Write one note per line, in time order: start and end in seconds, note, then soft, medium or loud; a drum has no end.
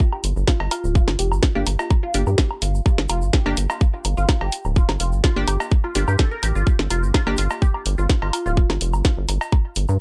0.00 kick loud
0.13 0.15 G4 medium
0.13 low woodblock medium
0.24 0.34 G1 loud
0.24 open hi-hat medium
0.24 shaker loud
0.36 0.45 G1 medium
0.36 shaker medium
0.48 0.52 F4 medium
0.48 kick loud
0.48 snare loud
0.48 low woodblock soft
0.48 shaker soft
0.60 0.69 G1 loud
0.60 cowbell medium
0.71 0.76 F4 medium
0.71 1.38 F4 loud
0.71 open hi-hat medium
0.71 low woodblock medium
0.71 shaker medium
0.84 1.02 D1 medium
0.84 shaker medium
0.95 0.98 F4 loud
0.95 kick loud
0.95 shaker soft
1.08 1.17 G1 loud
1.08 snare medium
1.08 low woodblock soft
1.19 1.33 F1 medium
1.19 1.21 G4 medium
1.19 open hi-hat loud
1.19 shaker loud
1.32 1.40 G1 loud
1.32 low woodblock medium
1.32 shaker medium
1.43 kick loud
1.43 snare loud
1.43 shaker soft
1.55 1.64 G1 medium
1.55 1.65 A#3 medium
1.55 1.65 D4 medium
1.55 1.59 F4 medium
1.55 1.65 G4 loud
1.66 1.77 G1 medium
1.66 open hi-hat loud
1.66 low woodblock soft
1.66 shaker medium
1.79 1.83 F4 medium
1.79 cowbell medium
1.79 shaker medium
1.90 kick loud
1.90 low woodblock medium
1.90 shaker soft
2.03 2.05 F4 loud
2.14 2.24 G1 medium
2.14 2.21 A#3 medium
2.14 2.21 D4 medium
2.14 2.21 G4 medium
2.14 open hi-hat loud
2.14 shaker loud
2.27 2.36 G2 medium
2.27 2.29 G4 medium
2.27 low woodblock soft
2.27 shaker medium
2.38 kick loud
2.38 snare loud
2.38 shaker soft
2.51 low woodblock medium
2.62 2.81 G1 loud
2.62 2.66 F4 medium
2.62 open hi-hat loud
2.62 shaker loud
2.75 shaker medium
2.86 2.90 F4 medium
2.86 kick loud
2.86 low woodblock soft
2.86 shaker soft
2.98 3.07 G1 loud
2.98 snare medium
3.09 3.24 F1 medium
3.09 3.12 F4 loud
3.09 open hi-hat loud
3.09 low woodblock medium
3.09 shaker loud
3.22 3.31 G1 medium
3.22 shaker medium
3.33 3.36 G4 medium
3.33 kick loud
3.33 snare loud
3.33 shaker soft
3.46 3.55 G1 medium
3.46 3.56 A#3 loud
3.46 3.56 D4 medium
3.46 3.56 G4 loud
3.46 cowbell medium
3.46 low woodblock soft
3.57 3.67 G1 medium
3.57 open hi-hat loud
3.57 shaker loud
3.70 3.73 F4 medium
3.70 cowbell medium
3.70 low woodblock medium
3.70 shaker medium
3.81 kick loud
3.81 shaker soft
3.94 3.97 F4 medium
4.05 4.15 G1 loud
4.05 open hi-hat loud
4.05 low woodblock soft
4.05 shaker loud
4.17 4.26 G1 medium
4.17 4.19 F4 loud
4.17 shaker medium
4.28 kick loud
4.28 snare medium
4.28 low woodblock medium
4.28 shaker soft
4.41 4.50 G1 loud
4.41 4.43 G4 medium
4.41 cowbell medium
4.52 open hi-hat medium
4.52 shaker loud
4.65 4.83 D1 loud
4.65 low woodblock soft
4.65 shaker medium
4.76 4.80 F4 medium
4.76 kick loud
4.76 shaker soft
4.89 4.98 G1 loud
4.89 snare medium
4.89 low woodblock medium
5.00 5.14 F1 medium
5.00 5.04 F4 medium
5.00 open hi-hat loud
5.00 shaker medium
5.12 5.21 G1 medium
5.12 shaker medium
5.24 5.26 F4 loud
5.24 kick loud
5.24 snare loud
5.24 low woodblock soft
5.24 shaker soft
5.36 5.45 G1 medium
5.36 5.46 A#3 medium
5.36 5.46 D4 medium
5.36 5.46 G4 medium
5.48 5.58 G1 medium
5.48 5.50 G4 medium
5.48 open hi-hat loud
5.48 low woodblock medium
5.48 shaker medium
5.60 cowbell medium
5.60 shaker medium
5.71 kick loud
5.71 shaker soft
5.84 5.88 F4 medium
5.84 low woodblock soft
5.95 6.05 G1 medium
5.95 6.02 A#3 medium
5.95 6.02 D4 medium
5.95 5.99 F4 medium
5.95 6.02 G4 medium
5.95 open hi-hat loud
5.95 shaker medium
6.08 6.17 G2 medium
6.08 6.13 G4 medium
6.08 low woodblock medium
6.08 shaker medium
6.18 6.21 A4 medium
6.18 kick loud
6.18 snare medium
6.18 shaker soft
6.31 6.37 A#4 medium
6.43 6.53 A1 medium
6.43 6.45 G4 medium
6.43 open hi-hat medium
6.43 low woodblock soft
6.43 shaker loud
6.55 6.64 G1 medium
6.55 6.58 F4 medium
6.55 shaker medium
6.67 kick loud
6.67 shaker soft
6.79 6.88 G1 loud
6.79 snare medium
6.90 7.05 F1 medium
6.90 6.95 F4 medium
6.90 open hi-hat loud
6.90 low woodblock soft
6.90 shaker medium
7.03 7.12 G1 medium
7.03 shaker medium
7.14 7.18 F4 medium
7.14 kick loud
7.14 snare medium
7.14 low woodblock medium
7.14 shaker soft
7.27 7.36 G1 medium
7.27 7.37 A#3 loud
7.27 7.37 D4 medium
7.27 7.37 G4 loud
7.27 cowbell medium
7.37 7.48 G1 medium
7.37 7.41 F4 loud
7.37 open hi-hat loud
7.37 shaker medium
7.50 cowbell medium
7.50 low woodblock soft
7.50 shaker medium
7.62 7.64 G4 medium
7.62 kick loud
7.62 shaker soft
7.74 low woodblock medium
7.86 7.96 G1 loud
7.86 open hi-hat medium
7.86 shaker medium
7.98 8.07 G1 medium
7.98 8.02 F4 medium
7.98 shaker soft
8.10 kick loud
8.10 snare medium
8.10 low woodblock soft
8.10 shaker soft
8.22 8.31 G1 loud
8.22 8.26 F4 medium
8.22 cowbell medium
8.33 9.00 F4 medium
8.33 open hi-hat medium
8.33 low woodblock medium
8.33 shaker medium
8.46 8.64 D1 loud
8.46 8.48 F4 loud
8.46 shaker medium
8.57 kick loud
8.57 shaker soft
8.70 8.79 G1 loud
8.70 snare medium
8.70 low woodblock soft
8.81 8.95 F1 medium
8.81 open hi-hat medium
8.81 shaker medium
8.93 9.02 G1 medium
8.93 low woodblock medium
8.93 shaker medium
9.05 kick loud
9.05 snare medium
9.05 shaker soft
9.18 9.26 G1 medium
9.28 9.38 G1 medium
9.28 open hi-hat medium
9.28 low woodblock soft
9.28 shaker medium
9.41 cowbell medium
9.41 shaker medium
9.52 kick loud
9.52 low woodblock medium
9.52 shaker soft
9.76 9.86 G1 medium
9.76 open hi-hat medium
9.76 shaker medium
9.88 9.98 G2 loud
9.88 low woodblock soft
9.88 shaker soft